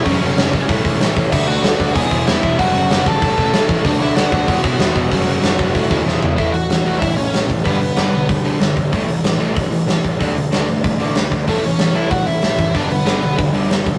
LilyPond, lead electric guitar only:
\new Staff \with { instrumentName = "Lead electric guitar" } { \time 4/4 \key a \major \tempo 4 = 189 <cis' cis''>2 r2 | <e' e''>8 <fis' fis''>4. <gis' gis''>4 <e' e''>4 | <fis' fis''>4 <fis' fis''>8 <a' a''>2 r8 | <d' d''>8 <e' e''>8 <fis' fis''>2.~ |
<fis' fis''>2. r4 | \key a \mixolydian <e' e''>8 <fis' fis''>4. <e' e''>8 <cis' cis''>4 r8 | <b b'>8 <b b'>4. r2 | r1 |
r1 | <a a'>8 <cis' cis''>4 <e' e''>8 <fis' fis''>8 <e' e''>4. | <d' d''>8 <b b'>4. r2 | }